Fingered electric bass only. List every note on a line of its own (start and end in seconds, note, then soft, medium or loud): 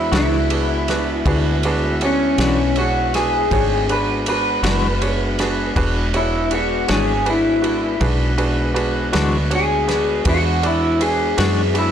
0.12 1.22 C#2 medium
1.25 2.35 D2 medium
2.38 3.48 B1 medium
3.51 4.60 G#1 medium
4.63 5.72 F#1 medium
5.76 6.85 E1 medium
6.89 7.98 G#1 medium
8.01 9.10 B1 medium
9.14 10.23 D2 medium
10.25 11.35 E2 medium
11.38 11.91 F#2 medium